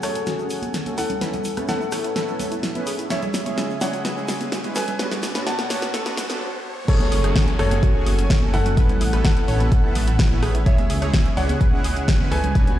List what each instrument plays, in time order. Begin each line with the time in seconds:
Already playing: analog synth pad F#3 C#4 A4 F#5 G#5, riser
0.03 supersaw synth A3 C#4 F#4 G#4, synth arpeggio sound A4, grand piano A4 C#5, cross-stick, open hi-hat, shaker
0.15 synth arpeggio sound C#4, closed hi-hat, shaker
0.26 synth arpeggio sound F#4, snare, closed hi-hat, shaker
0.39 supersaw synth A3 C#4 F#4 G#4, synth arpeggio sound C#4, shaker
0.50 open hi-hat, shaker
0.62 synth arpeggio sound C#4, closed hi-hat, high conga, shaker
0.74 synth arpeggio sound C#4, snare, closed hi-hat, shaker
0.86 supersaw synth A3 C#4 F#4 A4, synth arpeggio sound C#4, closed hi-hat, high conga, shaker
0.98 synth arpeggio sound E4, grand piano A4 F#5, open hi-hat, shaker
1.10 synth arpeggio sound C#4, closed hi-hat, low conga, shaker
1.21 analog synth pad A3 A4 B4 C#5 E5, supersaw synth B3 C#4 E4 A4, synth arpeggio sound B4, snare, closed hi-hat, shaker
1.33 synth arpeggio sound E4, closed hi-hat, low conga, shaker
1.44 synth arpeggio sound E4, open hi-hat, shaker
1.57 supersaw synth B3 C#4 E4 A4, synth arpeggio sound B4, cross-stick, closed hi-hat, high conga, shaker
1.68 synth arpeggio sound E4, grand piano A4 F#5, snare, closed hi-hat, shaker
1.81 synth arpeggio sound E4, shaker
1.92 supersaw synth B3 C#4 E4 A4, synth arpeggio sound C#5, cross-stick, open hi-hat, shaker
2.04 synth arpeggio sound E4, closed hi-hat, shaker
2.16 synth arpeggio sound A4, snare, closed hi-hat, shaker
2.28 supersaw synth B3 C#4 E4 A4, synth arpeggio sound E4, shaker
2.39 open hi-hat, high conga, low conga, shaker
2.52 synth arpeggio sound E4, closed hi-hat, shaker
2.63 synth arpeggio sound E4, snare, closed hi-hat, shaker
2.75 supersaw synth B3 C#4 E4 B4, synth arpeggio sound E4, closed hi-hat, high conga, shaker
2.86 synth arpeggio sound G#4, open hi-hat, shaker
2.99 synth arpeggio sound E4, closed hi-hat, shaker
3.10 analog synth pad C#3 C#4 G#4 G#5, supersaw synth G#3 C#4 E4 G#4, synth arpeggio sound C#5, grand piano C#5 E5, snare, closed hi-hat, shaker
3.22 synth arpeggio sound C#4, closed hi-hat, low conga, shaker
3.34 synth arpeggio sound C#4, snare, open hi-hat, shaker
3.46 supersaw synth G#3 C#4 E4 G#4, synth arpeggio sound C#5, closed hi-hat, high conga, shaker
3.57 synth arpeggio sound C#4, snare, closed hi-hat, shaker
3.70 synth arpeggio sound C#4, shaker
3.81 supersaw synth G#3 C#4 E4 G#4, grand piano C#5 F#5, synth arpeggio sound D5, snare, open hi-hat, shaker
3.93 synth arpeggio sound C#4, closed hi-hat, shaker
4.05 synth arpeggio sound B4, snare, closed hi-hat, shaker
4.17 supersaw synth G#3 C#4 E4 G#4, synth arpeggio sound C#4, shaker
4.28 snare, open hi-hat, shaker
4.41 synth arpeggio sound C#4, closed hi-hat, high conga, shaker
4.52 synth arpeggio sound C#4, snare, closed hi-hat, shaker
4.64 supersaw synth G#3 C#4 E4 B4, synth arpeggio sound C#4, closed hi-hat, high conga, shaker
4.75 synth arpeggio sound A4, grand piano B4 G#5, snare, open hi-hat, shaker
4.88 synth arpeggio sound C#4, closed hi-hat, low conga, shaker
4.99 analog synth pad B2 B3 C#5 D5 F#5, supersaw synth B3 C#4 D4 F#4, synth arpeggio sound B4, snare, closed hi-hat, shaker
5.11 synth arpeggio sound B3, snare, closed hi-hat, low conga, shaker
5.23 synth arpeggio sound B3, snare, open hi-hat, shaker
5.34 supersaw synth B3 C#4 D4 F#4, synth arpeggio sound B4, snare, closed hi-hat, high conga, shaker
5.47 synth arpeggio sound B3, grand piano F#5 A5, snare, closed hi-hat, shaker
5.58 synth arpeggio sound B3, snare, shaker
5.70 supersaw synth B3 C#4 D4 F#4, synth arpeggio sound C#5, snare, open hi-hat, high conga, shaker
5.82 synth arpeggio sound B3, snare, closed hi-hat, shaker
5.94 synth arpeggio sound A4, snare, closed hi-hat, swell, shaker
6.06 synth arpeggio sound B3, supersaw synth B3 C#4 D4 F#4, snare, shaker
6.17 snare, open hi-hat, high conga, low conga, shaker
6.30 supersaw synth B3 C#4 D4 A4, synth arpeggio sound B3, snare, closed hi-hat, shaker
6.88 supersaw synth A3 C#4 F#4 G#4, analog synth pad A3 F#4 G#5, synth arpeggio sound G#4, grand piano A4 C#5, digital synth lead C#5, kick, closed hi-hat, crash, downlifter
7.00 synth arpeggio sound C#4, closed hi-hat, high conga, low conga
7.11 detuned saw bass F#1, synth arpeggio sound C#4, open hi-hat, high woodblock
7.24 detuned saw bass F#1, supersaw synth A3 C#4 F#4 G#4, synth arpeggio sound G#4, cross-stick, closed hi-hat, high woodblock
7.36 synth arpeggio sound C#4, kick, snare, closed hi-hat, high conga
7.48 synth arpeggio sound C#4, closed hi-hat
7.59 detuned saw bass F#1, supersaw synth A3 C#4 F#4 G#4, synth arpeggio sound A4, grand piano A4 C#5, digital synth lead C#5, cross-stick, open hi-hat
7.71 detuned saw bass F#1, synth arpeggio sound C#4, closed hi-hat, high conga
7.83 synth arpeggio sound F#4, kick, closed hi-hat
7.95 supersaw synth A3 C#4 F#4 G#4, synth arpeggio sound C#4
8.06 detuned saw bass F#1, open hi-hat, high conga, high woodblock
8.19 detuned saw bass F#1, synth arpeggio sound C#4, closed hi-hat
8.30 synth arpeggio sound C#4, kick, snare, closed hi-hat
8.42 detuned saw bass F#1, supersaw synth A3 C#4 F#4 A4, synth arpeggio sound C#4, high conga
8.54 detuned saw bass F#1, synth arpeggio sound E4, grand piano A4 F#5, digital synth lead F#5, open hi-hat
8.66 detuned saw bass F#1, synth arpeggio sound C#4, closed hi-hat, low conga
8.77 supersaw synth B3 C#4 E4 A4, analog synth pad A4 B4 C#5 E5, synth arpeggio sound B4, kick, closed hi-hat
8.89 synth arpeggio sound E4, closed hi-hat, high conga, low conga
9.01 detuned saw bass A1, synth arpeggio sound E4, open hi-hat, high woodblock
9.13 detuned saw bass A1, supersaw synth B3 C#4 E4 A4, synth arpeggio sound B4, cross-stick, closed hi-hat
9.24 synth arpeggio sound E4, grand piano A4 F#5, digital synth lead F#5, kick, snare, closed hi-hat, high conga
9.37 synth arpeggio sound E4, closed hi-hat
9.48 detuned saw bass A1, supersaw synth B3 C#4 E4 A4, synth arpeggio sound C#5, open hi-hat
9.60 detuned saw bass A1, synth arpeggio sound E4, closed hi-hat, high conga
9.72 synth arpeggio sound A4, kick, closed hi-hat
9.84 supersaw synth B3 C#4 E4 A4, synth arpeggio sound E4
9.95 detuned saw bass A1, open hi-hat, high conga, low conga, high woodblock
10.07 detuned saw bass A1, synth arpeggio sound E4, closed hi-hat
10.19 synth arpeggio sound E4, kick, snare, closed hi-hat
10.31 detuned saw bass A1, supersaw synth B3 C#4 E4 B4, synth arpeggio sound E4, high conga
10.43 detuned saw bass A1, synth arpeggio sound G#4, cross-stick, open hi-hat
10.55 detuned saw bass A1, synth arpeggio sound E4, closed hi-hat
10.66 supersaw synth G#3 C#4 E4 G#4, analog synth pad E4 G#4, synth arpeggio sound C#5, grand piano C#5 E5, digital synth lead E5, kick, closed hi-hat
10.78 synth arpeggio sound C#4, closed hi-hat, high conga, low conga
10.90 detuned saw bass C#2, synth arpeggio sound C#4, open hi-hat, high woodblock
11.02 detuned saw bass C#2, supersaw synth G#3 C#4 E4 G#4, synth arpeggio sound C#5, cross-stick, closed hi-hat, high woodblock
11.13 synth arpeggio sound C#4, kick, snare, closed hi-hat, high conga
11.26 synth arpeggio sound C#4, closed hi-hat
11.37 detuned saw bass C#2, supersaw synth G#3 C#4 E4 G#4, grand piano C#5 F#5, synth arpeggio sound D5, digital synth lead F#5, open hi-hat
11.49 detuned saw bass C#2, synth arpeggio sound C#4, closed hi-hat, high conga
11.61 synth arpeggio sound B4, kick, closed hi-hat
11.73 supersaw synth G#3 C#4 E4 G#4, synth arpeggio sound C#4
11.84 detuned saw bass C#2, open hi-hat, high conga, high woodblock
11.96 detuned saw bass C#2, synth arpeggio sound C#4, closed hi-hat
12.08 synth arpeggio sound C#4, kick, snare, closed hi-hat
12.20 detuned saw bass C#2, supersaw synth G#3 C#4 E4 B4, synth arpeggio sound C#4, high conga
12.32 detuned saw bass C#2, synth arpeggio sound A4, grand piano B4 G#5, digital synth lead G#5, open hi-hat
12.43 detuned saw bass C#2, synth arpeggio sound C#4, closed hi-hat, low conga
12.55 supersaw synth B3 C#4 D4 F#4, analog synth pad B3 B4 F#5, synth arpeggio sound B4, kick, closed hi-hat
12.67 synth arpeggio sound B3, closed hi-hat, high conga, low conga